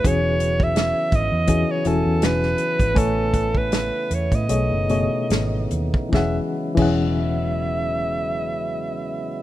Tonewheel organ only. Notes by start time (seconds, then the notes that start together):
Already playing: E3 E4
0.06 C#3 F#3 B3
2.96 A3 B3
4.50 C#3 B3 D#4
6.13 C#3 F#3 G#3 B3 E4